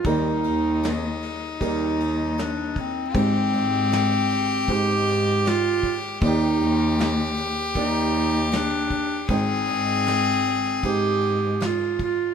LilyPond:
<<
  \new Staff \with { instrumentName = "Violin" } { \time 4/4 \key ees \major \tempo 4 = 78 ees'1 | g'1 | g'1 | aes'2.~ aes'8 r8 | }
  \new Staff \with { instrumentName = "Clarinet" } { \time 4/4 \key ees \major ees'4. r8 ees'4 d'8 c'8~ | c'2 g'4 f'8 r8 | ees'4. r8 ees'4 d'4 | c'2 g'4 f'8 f'8 | }
  \new Staff \with { instrumentName = "Grand piano" } { \time 4/4 \key ees \major <g bes ees' bes' d''>4. r8 <g bes ees' bes' d''>4. r8 | <aes c' ees' g' c''>4. r8 <aes c' ees' g' c''>4. r8 | <bes ees' g' d''>4. r8 <bes ees' g' d''>4. r8 | <aes c' ees' c'' g''>4. r8 <aes c' ees' c'' g''>4. r8 | }
  \new Staff \with { instrumentName = "Grand piano" } { \clef bass \time 4/4 \key ees \major <ees, ees>1 | <aes,, aes,>1 | <ees, ees>1 | <aes,, aes,>1 | }
  \new Staff \with { instrumentName = "Cello" } { \clef bass \time 4/4 \key ees \major ees,16 r16 ees,4. ees,2 | aes,16 r16 aes,4. aes,2 | ees,16 r16 ees,4. ees,2 | aes,16 r16 aes,4. aes,2 | }
  \new DrumStaff \with { instrumentName = "Drums" } \drummode { \time 4/4 <bd cymr>8 cymr8 <cymr sn>8 cymr8 <bd cymr>8 cymr8 <cymr sn>8 <bd cymr>8 | <bd cymr>8 cymr8 <cymr sn>8 cymr8 <bd cymr>8 cymr8 <cymr sn>8 <bd cymr>8 | <bd cymr>8 cymr8 <cymr sn>8 cymr8 <bd cymr>8 cymr8 <cymr sn>8 <bd cymr>8 | <bd cymr>8 cymr8 <cymr sn>8 cymr8 <bd cymr>8 cymr8 <cymr sn>8 <bd cymr>8 | }
>>